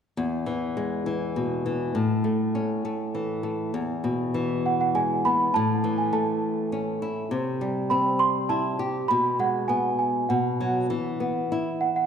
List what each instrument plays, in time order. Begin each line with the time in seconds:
0.17 nylon-string guitar E2
0.46 nylon-string guitar E3
0.77 nylon-string guitar G#3
1.06 nylon-string guitar E3
1.36 nylon-string guitar B2
1.66 nylon-string guitar E3
1.95 nylon-string guitar A2
2.24 nylon-string guitar A3
2.55 nylon-string guitar C#4
2.85 nylon-string guitar A3
3.15 nylon-string guitar E3
3.43 nylon-string guitar A3
3.74 nylon-string guitar E2
4.04 nylon-string guitar B2
4.34 nylon-string guitar E3
4.66 celesta F#5
4.81 celesta F#5
4.95 nylon-string guitar G#3, celesta G#5
5.25 nylon-string guitar B3, celesta B5
5.54 nylon-string guitar A2, celesta A5
5.84 nylon-string guitar E3
5.98 celesta G#5
6.13 nylon-string guitar A3, celesta A5
6.72 nylon-string guitar C#4
7.02 nylon-string guitar E4
7.31 nylon-string guitar C3
7.61 nylon-string guitar G3
7.90 nylon-string guitar C4, celesta B5
8.19 celesta C6
8.49 nylon-string guitar E4, celesta A5
8.79 nylon-string guitar G4
9.08 nylon-string guitar B2, celesta B5
9.39 nylon-string guitar G#3, celesta F#5
9.68 nylon-string guitar B3, celesta G#5
9.99 celesta G#5
10.29 nylon-string guitar B2, celesta F#5
10.61 nylon-string guitar F#3
10.90 nylon-string guitar E3
11.20 nylon-string guitar B3
11.52 nylon-string guitar E4
11.81 celesta F#5
11.96 celesta F#5